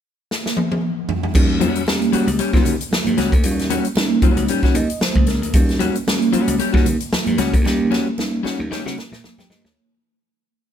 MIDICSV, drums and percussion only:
0, 0, Header, 1, 2, 480
1, 0, Start_track
1, 0, Tempo, 524934
1, 1231, Time_signature, 4, 2, 24, 8
1, 9808, End_track
2, 0, Start_track
2, 0, Title_t, "Drums"
2, 285, Note_on_c, 9, 38, 54
2, 377, Note_off_c, 9, 38, 0
2, 421, Note_on_c, 9, 38, 55
2, 512, Note_off_c, 9, 38, 0
2, 519, Note_on_c, 9, 48, 68
2, 610, Note_off_c, 9, 48, 0
2, 654, Note_on_c, 9, 48, 68
2, 746, Note_off_c, 9, 48, 0
2, 994, Note_on_c, 9, 43, 96
2, 1086, Note_off_c, 9, 43, 0
2, 1128, Note_on_c, 9, 43, 87
2, 1220, Note_off_c, 9, 43, 0
2, 1224, Note_on_c, 9, 62, 52
2, 1233, Note_on_c, 9, 36, 100
2, 1236, Note_on_c, 9, 49, 92
2, 1315, Note_off_c, 9, 62, 0
2, 1325, Note_off_c, 9, 36, 0
2, 1328, Note_off_c, 9, 49, 0
2, 1471, Note_on_c, 9, 62, 55
2, 1474, Note_on_c, 9, 42, 55
2, 1563, Note_off_c, 9, 62, 0
2, 1566, Note_off_c, 9, 42, 0
2, 1605, Note_on_c, 9, 42, 48
2, 1697, Note_off_c, 9, 42, 0
2, 1706, Note_on_c, 9, 63, 68
2, 1718, Note_on_c, 9, 38, 120
2, 1798, Note_off_c, 9, 63, 0
2, 1809, Note_off_c, 9, 38, 0
2, 1844, Note_on_c, 9, 42, 32
2, 1936, Note_off_c, 9, 42, 0
2, 1948, Note_on_c, 9, 42, 72
2, 1949, Note_on_c, 9, 62, 34
2, 2040, Note_off_c, 9, 42, 0
2, 2041, Note_off_c, 9, 62, 0
2, 2083, Note_on_c, 9, 42, 59
2, 2174, Note_off_c, 9, 42, 0
2, 2184, Note_on_c, 9, 42, 77
2, 2276, Note_off_c, 9, 42, 0
2, 2318, Note_on_c, 9, 36, 88
2, 2323, Note_on_c, 9, 42, 31
2, 2336, Note_on_c, 9, 38, 30
2, 2409, Note_off_c, 9, 36, 0
2, 2414, Note_off_c, 9, 42, 0
2, 2425, Note_on_c, 9, 62, 59
2, 2425, Note_on_c, 9, 64, 87
2, 2428, Note_off_c, 9, 38, 0
2, 2431, Note_on_c, 9, 42, 68
2, 2516, Note_off_c, 9, 62, 0
2, 2516, Note_off_c, 9, 64, 0
2, 2522, Note_off_c, 9, 42, 0
2, 2567, Note_on_c, 9, 42, 56
2, 2658, Note_off_c, 9, 42, 0
2, 2663, Note_on_c, 9, 63, 69
2, 2676, Note_on_c, 9, 38, 102
2, 2754, Note_off_c, 9, 63, 0
2, 2768, Note_off_c, 9, 38, 0
2, 2787, Note_on_c, 9, 63, 74
2, 2803, Note_on_c, 9, 42, 35
2, 2878, Note_off_c, 9, 63, 0
2, 2895, Note_off_c, 9, 42, 0
2, 2905, Note_on_c, 9, 42, 53
2, 2920, Note_on_c, 9, 38, 31
2, 2996, Note_off_c, 9, 42, 0
2, 3012, Note_off_c, 9, 38, 0
2, 3039, Note_on_c, 9, 36, 83
2, 3043, Note_on_c, 9, 42, 54
2, 3131, Note_off_c, 9, 36, 0
2, 3135, Note_off_c, 9, 42, 0
2, 3142, Note_on_c, 9, 42, 88
2, 3142, Note_on_c, 9, 62, 53
2, 3233, Note_off_c, 9, 42, 0
2, 3234, Note_off_c, 9, 62, 0
2, 3286, Note_on_c, 9, 42, 37
2, 3295, Note_on_c, 9, 38, 31
2, 3377, Note_off_c, 9, 42, 0
2, 3386, Note_on_c, 9, 42, 56
2, 3387, Note_off_c, 9, 38, 0
2, 3388, Note_on_c, 9, 62, 54
2, 3477, Note_off_c, 9, 42, 0
2, 3480, Note_off_c, 9, 62, 0
2, 3517, Note_on_c, 9, 42, 46
2, 3609, Note_off_c, 9, 42, 0
2, 3617, Note_on_c, 9, 63, 70
2, 3630, Note_on_c, 9, 38, 115
2, 3708, Note_off_c, 9, 63, 0
2, 3721, Note_off_c, 9, 38, 0
2, 3859, Note_on_c, 9, 42, 65
2, 3861, Note_on_c, 9, 36, 96
2, 3950, Note_off_c, 9, 42, 0
2, 3952, Note_off_c, 9, 36, 0
2, 3994, Note_on_c, 9, 42, 57
2, 4086, Note_off_c, 9, 42, 0
2, 4100, Note_on_c, 9, 42, 80
2, 4191, Note_off_c, 9, 42, 0
2, 4232, Note_on_c, 9, 42, 30
2, 4233, Note_on_c, 9, 36, 75
2, 4246, Note_on_c, 9, 38, 33
2, 4323, Note_off_c, 9, 42, 0
2, 4324, Note_off_c, 9, 36, 0
2, 4337, Note_off_c, 9, 38, 0
2, 4342, Note_on_c, 9, 42, 64
2, 4345, Note_on_c, 9, 62, 68
2, 4433, Note_off_c, 9, 42, 0
2, 4436, Note_off_c, 9, 62, 0
2, 4478, Note_on_c, 9, 42, 52
2, 4569, Note_off_c, 9, 42, 0
2, 4579, Note_on_c, 9, 63, 66
2, 4584, Note_on_c, 9, 38, 102
2, 4670, Note_off_c, 9, 63, 0
2, 4675, Note_off_c, 9, 38, 0
2, 4706, Note_on_c, 9, 63, 70
2, 4715, Note_on_c, 9, 36, 83
2, 4798, Note_off_c, 9, 63, 0
2, 4806, Note_off_c, 9, 36, 0
2, 4815, Note_on_c, 9, 42, 54
2, 4830, Note_on_c, 9, 38, 29
2, 4907, Note_off_c, 9, 42, 0
2, 4922, Note_off_c, 9, 38, 0
2, 4966, Note_on_c, 9, 42, 49
2, 5057, Note_off_c, 9, 42, 0
2, 5062, Note_on_c, 9, 42, 93
2, 5064, Note_on_c, 9, 36, 111
2, 5066, Note_on_c, 9, 62, 55
2, 5153, Note_off_c, 9, 42, 0
2, 5156, Note_off_c, 9, 36, 0
2, 5158, Note_off_c, 9, 62, 0
2, 5202, Note_on_c, 9, 42, 35
2, 5211, Note_on_c, 9, 38, 31
2, 5293, Note_off_c, 9, 42, 0
2, 5303, Note_off_c, 9, 38, 0
2, 5305, Note_on_c, 9, 42, 58
2, 5306, Note_on_c, 9, 62, 54
2, 5397, Note_off_c, 9, 42, 0
2, 5398, Note_off_c, 9, 62, 0
2, 5445, Note_on_c, 9, 42, 49
2, 5536, Note_off_c, 9, 42, 0
2, 5556, Note_on_c, 9, 63, 72
2, 5557, Note_on_c, 9, 38, 113
2, 5648, Note_off_c, 9, 63, 0
2, 5649, Note_off_c, 9, 38, 0
2, 5687, Note_on_c, 9, 42, 33
2, 5779, Note_off_c, 9, 42, 0
2, 5788, Note_on_c, 9, 62, 33
2, 5790, Note_on_c, 9, 42, 66
2, 5880, Note_off_c, 9, 62, 0
2, 5882, Note_off_c, 9, 42, 0
2, 5923, Note_on_c, 9, 42, 60
2, 6014, Note_off_c, 9, 42, 0
2, 6030, Note_on_c, 9, 42, 78
2, 6122, Note_off_c, 9, 42, 0
2, 6162, Note_on_c, 9, 36, 81
2, 6180, Note_on_c, 9, 38, 31
2, 6254, Note_off_c, 9, 36, 0
2, 6270, Note_on_c, 9, 62, 63
2, 6270, Note_on_c, 9, 64, 79
2, 6272, Note_off_c, 9, 38, 0
2, 6273, Note_on_c, 9, 42, 68
2, 6362, Note_off_c, 9, 62, 0
2, 6362, Note_off_c, 9, 64, 0
2, 6365, Note_off_c, 9, 42, 0
2, 6405, Note_on_c, 9, 42, 52
2, 6496, Note_off_c, 9, 42, 0
2, 6516, Note_on_c, 9, 38, 106
2, 6516, Note_on_c, 9, 63, 72
2, 6607, Note_off_c, 9, 38, 0
2, 6608, Note_off_c, 9, 63, 0
2, 6642, Note_on_c, 9, 63, 71
2, 6644, Note_on_c, 9, 42, 33
2, 6733, Note_off_c, 9, 63, 0
2, 6736, Note_off_c, 9, 42, 0
2, 6750, Note_on_c, 9, 42, 60
2, 6765, Note_on_c, 9, 38, 29
2, 6841, Note_off_c, 9, 42, 0
2, 6856, Note_off_c, 9, 38, 0
2, 6891, Note_on_c, 9, 36, 82
2, 6894, Note_on_c, 9, 42, 53
2, 6982, Note_off_c, 9, 36, 0
2, 6985, Note_off_c, 9, 42, 0
2, 7000, Note_on_c, 9, 62, 55
2, 7006, Note_on_c, 9, 38, 59
2, 7091, Note_off_c, 9, 62, 0
2, 7097, Note_off_c, 9, 38, 0
2, 7239, Note_on_c, 9, 62, 50
2, 7250, Note_on_c, 9, 38, 62
2, 7330, Note_off_c, 9, 62, 0
2, 7342, Note_off_c, 9, 38, 0
2, 7479, Note_on_c, 9, 63, 71
2, 7490, Note_on_c, 9, 38, 74
2, 7571, Note_off_c, 9, 63, 0
2, 7582, Note_off_c, 9, 38, 0
2, 7726, Note_on_c, 9, 62, 32
2, 7733, Note_on_c, 9, 38, 73
2, 7817, Note_off_c, 9, 62, 0
2, 7825, Note_off_c, 9, 38, 0
2, 7971, Note_on_c, 9, 38, 73
2, 8062, Note_off_c, 9, 38, 0
2, 8106, Note_on_c, 9, 38, 67
2, 8198, Note_off_c, 9, 38, 0
2, 8210, Note_on_c, 9, 62, 55
2, 8217, Note_on_c, 9, 38, 79
2, 8302, Note_off_c, 9, 62, 0
2, 8308, Note_off_c, 9, 38, 0
2, 8346, Note_on_c, 9, 38, 77
2, 8438, Note_off_c, 9, 38, 0
2, 8451, Note_on_c, 9, 38, 86
2, 8453, Note_on_c, 9, 63, 62
2, 8542, Note_off_c, 9, 38, 0
2, 8544, Note_off_c, 9, 63, 0
2, 8580, Note_on_c, 9, 63, 80
2, 8587, Note_on_c, 9, 38, 87
2, 8672, Note_off_c, 9, 63, 0
2, 8679, Note_off_c, 9, 38, 0
2, 8691, Note_on_c, 9, 38, 95
2, 8783, Note_off_c, 9, 38, 0
2, 8825, Note_on_c, 9, 38, 89
2, 8916, Note_off_c, 9, 38, 0
2, 9808, End_track
0, 0, End_of_file